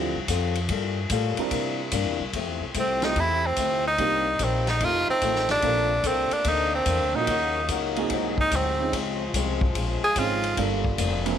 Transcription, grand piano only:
0.00 0.12 F3 medium
0.00 0.13 C4 medium
0.00 0.13 D4 medium
0.00 0.13 E4 medium
0.00 0.13 G4 medium
1.38 1.90 G3 medium
1.38 1.90 C4 medium
1.38 1.90 D4 medium
1.38 1.90 E4 medium
1.38 1.91 A#4 medium
3.02 3.54 A3 medium
3.02 3.55 C4 soft
3.02 3.55 E4 soft
3.02 3.55 F4 medium
3.02 3.55 G4 medium
3.99 4.23 A#3 medium
3.99 4.24 C4 medium
3.99 4.24 D4 medium
3.99 4.24 D#4 medium
3.99 4.24 G4 medium
5.63 5.88 A#3 medium
5.63 5.88 C4 medium
5.63 5.88 D4 medium
5.63 5.88 F4 medium
5.63 5.88 A4 medium
7.15 7.27 A#3 medium
7.15 7.27 C#4 medium
7.15 7.27 D#4 medium
7.15 7.27 F4 medium
7.15 7.27 F#4 medium
7.97 8.49 A#3 medium
7.97 8.49 C4 medium
7.97 8.49 D#4 medium
7.97 8.49 F#4 medium
7.97 8.50 G#4 medium
8.80 8.92 C4 medium
8.80 8.92 C#4 soft
8.80 8.92 D#4 medium
8.80 8.92 F4 soft
8.80 8.92 G#4 medium
10.17 10.58 C4 medium
10.17 10.58 C#4 medium
10.17 10.58 D#4 medium
10.17 10.57 F4 medium
10.17 10.58 G#4 medium
10.58 10.82 G3 medium
10.58 10.82 A#3 medium
10.58 10.83 D4 medium
10.58 10.83 F4 medium
10.58 10.83 A4 medium
11.26 11.38 E3 medium
11.26 11.38 A#3 medium
11.26 11.38 C4 medium
11.26 11.38 D4 medium
11.26 11.38 E4 medium

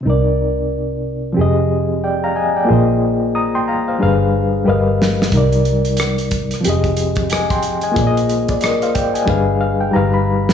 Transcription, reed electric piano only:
0.01 1.32 C3 medium
0.01 1.33 C4 medium
0.05 1.34 D#4 medium
0.05 1.35 A#4 soft
0.10 1.36 D5 medium
1.32 2.64 F3 medium
1.32 2.65 C4 medium
1.37 2.66 G4 medium
1.37 2.67 G#4 medium
1.41 2.03 D#5 medium
2.04 2.22 D5 soft
2.04 2.22 G5 soft
2.24 2.36 F5 soft
2.24 2.35 A#5 medium
2.36 2.55 D#5 soft
2.36 2.54 G#5 medium
2.56 2.87 D5 soft
2.56 2.87 G5 medium
2.65 3.96 A#3 medium
2.65 3.97 F4 medium
2.69 3.98 G#4 medium
2.69 3.34 C5 medium
2.73 3.35 D#5 medium
3.35 3.54 A#5 soft
3.35 3.53 D#6 medium
3.55 3.67 G5 soft
3.55 3.67 C6 medium
3.68 3.87 F5 soft
3.68 3.86 A#5 medium
3.88 4.19 C5 soft
3.88 4.01 F5 medium
3.99 4.64 G3 medium
3.99 4.66 D4 medium
3.99 4.66 G#4 medium
3.99 4.66 B4 medium
3.99 4.67 F5 medium
4.65 5.29 G3 medium
4.65 5.32 G4 medium
4.65 5.32 A#4 medium
4.65 5.33 B4 medium
4.65 5.33 D#5 medium
4.70 5.34 F5 medium
5.29 6.59 C3 medium
5.29 6.60 G3 medium
5.33 6.62 D#4 medium
5.33 6.63 A#4 medium
5.37 6.64 D5 medium
6.61 7.91 F3 medium
6.61 7.92 C4 medium
6.65 7.94 G4 medium
6.65 7.95 G#4 medium
6.70 7.31 D#5 medium
7.32 7.50 D#5 soft
7.32 7.50 G#5 medium
7.51 7.82 G5 soft
7.51 7.81 C6 medium
7.83 8.06 D#5 soft
7.83 8.14 G#5 medium
7.92 9.23 A#3 medium
7.92 9.24 F4 medium
7.96 8.28 G#4 medium
7.96 8.29 C5 medium
8.01 8.06 D5 medium
8.07 8.34 D#5 medium
8.50 8.62 G#4 soft
8.50 8.62 D5 medium
8.62 8.81 A#4 soft
8.62 8.81 D#5 medium
8.83 8.95 C5 medium
8.83 8.95 F5 medium
8.95 9.14 D5 medium
8.95 9.13 G5 medium
9.14 9.46 D#5 soft
9.14 9.46 G#5 soft
9.25 9.90 G3 medium
9.25 9.93 D4 medium
9.25 9.93 G#4 medium
9.25 9.94 B4 medium
9.30 9.60 F5 medium
9.61 9.79 F5 medium
9.81 9.93 G5 medium
9.91 10.53 G3 medium
9.91 10.53 D#4 medium
9.91 10.53 G4 medium
9.91 10.53 B4 medium
9.91 10.12 A#5 medium
9.96 10.53 F5 medium
10.14 10.53 B5 medium

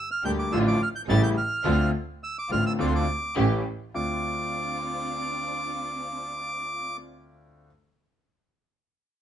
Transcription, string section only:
0.24 0.48 A#3 medium
0.24 0.48 D4 soft
0.24 0.48 G4 medium
0.52 0.76 A3 medium
0.52 0.76 D4 medium
0.52 0.76 F4 medium
1.08 1.32 A3 medium
1.08 1.32 C#4 medium
1.08 1.33 G4 medium
1.65 1.89 C4 medium
1.65 1.89 D4 medium
1.65 1.89 F4 medium
2.50 2.74 C4 medium
2.50 2.74 D4 soft
2.50 2.74 F4 medium
2.79 3.03 C4 medium
2.79 3.03 D4 medium
2.79 3.03 F4 medium
3.36 3.61 A3 medium
3.36 3.61 C#4 medium
3.36 3.61 G4 medium
3.94 6.96 C4 medium
3.94 6.97 D4 medium
3.94 6.96 F4 medium

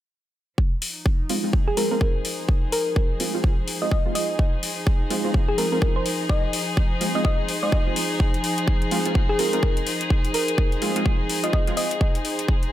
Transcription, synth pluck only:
1.68 1.75 G#4 medium
1.77 1.86 A#4 medium
1.91 1.97 A#4 medium
2.72 2.89 A#4 medium
3.82 3.88 D#5 medium
3.91 4.00 D#5 medium
4.15 4.53 D#5 medium
5.48 5.56 G#4 medium
5.58 5.67 A#4 medium
5.72 5.78 A#4 medium
5.96 6.10 C5 medium
6.29 6.46 D#5 medium
7.15 7.21 D#5 medium
7.25 7.34 D#5 medium
7.63 8.10 D#5 medium
9.29 9.37 G#4 medium
9.39 9.48 A#4 medium
9.53 9.59 A#4 medium
10.34 10.51 A#4 medium
11.44 11.50 D#5 medium
11.53 11.62 D#5 medium
11.77 12.15 D#5 medium

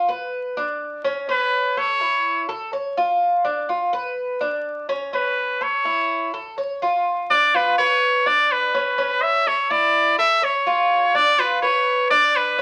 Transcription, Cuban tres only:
0.09 0.55 B4 medium
0.57 1.03 D4 medium
1.05 1.28 C#4 medium
1.29 1.75 C#4 medium
1.77 2.00 A4 medium
2.01 2.47 E4 medium
2.49 2.72 A4 medium
2.73 2.96 C#5 medium
2.97 3.44 F4 medium
3.45 3.68 D4 medium
3.69 3.92 F4 medium
3.93 4.39 B4 medium
4.41 4.87 D4 medium
4.89 5.12 C#4 loud
5.13 5.60 C#4 medium
5.61 5.84 A4 medium
5.85 6.32 E4 medium
6.34 6.57 A4 medium
6.58 6.81 C#5 medium
6.82 7.28 F4 medium
7.30 7.53 D4 medium
7.54 7.77 F4 medium
7.79 8.25 B4 medium
8.26 8.73 D4 medium
8.74 8.97 C#4 medium
8.98 9.45 C#4 medium
9.47 9.70 A4 medium
9.71 10.17 E4 medium
10.19 10.42 A4 medium
10.42 10.66 C#5 medium
10.67 11.13 F4 medium
11.15 11.38 D4 medium
11.38 11.62 F4 medium
11.63 12.09 B4 medium
12.11 12.57 D4 medium
12.59 12.62 C#4 medium

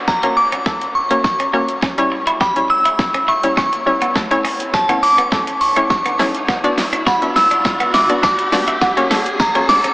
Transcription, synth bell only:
0.08 0.38 A#5 medium
0.37 0.97 D6 loud
0.95 1.22 C#6 medium
1.24 1.78 C#6 medium
2.41 2.71 B5 medium
2.70 3.30 E6 loud
3.29 3.56 C#6 medium
3.57 4.12 C#6 medium
4.74 4.87 A5 medium
5.03 5.63 D6 loud
5.61 5.89 C#6 medium
5.90 6.44 C#6 medium
7.07 7.20 B5 medium
7.36 7.96 E6 loud
7.94 8.07 D6 medium
8.24 8.78 D6 medium
9.40 9.70 A#5 loud
9.69 9.94 D6 loud

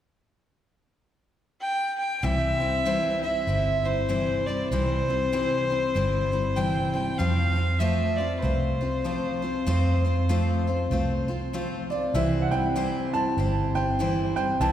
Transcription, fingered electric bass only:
2.23 3.12 C2 medium
3.47 4.36 G1 medium
4.71 5.61 C2 medium
5.95 6.85 G1 medium
7.19 8.09 F2 medium
8.43 9.32 C2 medium
9.67 10.56 F2 medium
10.90 11.79 C2 medium
12.14 13.03 C2 medium
13.37 14.26 G1 medium
14.60 14.72 C2 medium

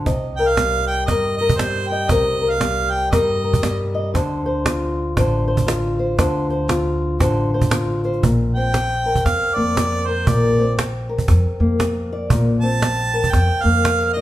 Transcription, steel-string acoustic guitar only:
0.06 2.08 C3 medium
0.06 1.90 D#5 medium
0.39 1.10 A#4 soft
0.58 1.09 G3 medium
1.10 1.59 G3 medium
1.10 1.40 A#4 medium
1.41 2.09 A#4 soft
1.61 2.59 G3 medium
1.92 2.09 D#5 medium
2.10 4.12 C3 medium
2.10 2.40 A#4 soft
2.41 3.12 A#4 soft
2.60 3.11 G3 medium
3.12 3.63 G3 medium
3.12 3.43 A#4 medium
3.44 4.13 A#4 soft
3.64 4.15 G3 medium
3.94 4.13 D#5 medium
4.14 5.17 D3 medium
4.14 4.45 C5 medium
4.46 5.18 C5 medium
4.65 5.66 F4 medium
5.17 6.17 D3 medium
5.17 5.47 C5 medium
5.48 5.99 C5 medium
5.66 6.69 F4 medium
5.99 6.19 C5 medium
6.19 7.20 D3 medium
6.19 6.49 C5 medium
6.50 7.20 C5 medium
6.69 7.71 F4 medium
7.21 8.23 D3 medium
7.21 7.52 C5 medium
7.54 8.03 C5 medium
7.72 8.21 F4 medium
8.05 8.22 C5 medium
8.24 8.74 A#2 medium
8.57 10.58 C4 soft
8.74 muted steel-string acoustic guitar stroke medium
9.06 10.08 A#4 medium
9.57 10.61 A#3 soft
9.77 muted steel-string acoustic guitar stroke medium
10.08 10.61 A#4 medium
10.28 10.78 A#2 medium
10.58 12.63 C4 soft
10.78 muted steel-string acoustic guitar stroke medium
11.09 12.66 A#4 soft
11.60 12.66 A#3 medium
11.81 muted steel-string acoustic guitar stroke medium
12.13 12.66 D5 medium
12.32 12.82 A#2 medium
12.63 14.21 C4 soft
12.83 muted steel-string acoustic guitar stroke medium
13.14 14.21 A#4 medium
13.64 14.21 A#3 medium
13.84 muted steel-string acoustic guitar stroke medium
14.17 14.21 D5 medium

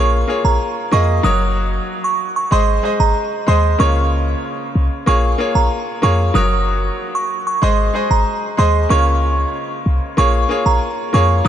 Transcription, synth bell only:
0.45 0.58 A#5 medium
0.93 1.06 C#6 medium
1.24 1.69 D#6 loud
2.04 2.17 C#6 medium
2.36 2.49 C#6 medium
2.52 2.65 C6 medium
3.00 3.13 A#5 medium
3.48 3.61 C6 medium
3.80 4.25 C#6 loud
5.07 5.21 C#6 loud
5.55 5.68 A#5 medium
6.03 6.16 C#6 medium
6.35 6.80 D#6 loud
7.15 7.28 C#6 medium
7.47 7.60 C#6 medium
7.63 7.76 C6 medium
8.11 8.24 A#5 medium
8.59 8.72 C6 medium
8.90 9.35 C#6 loud
10.18 10.31 C#6 loud
10.66 10.79 A#5 medium
11.14 11.27 C#6 medium

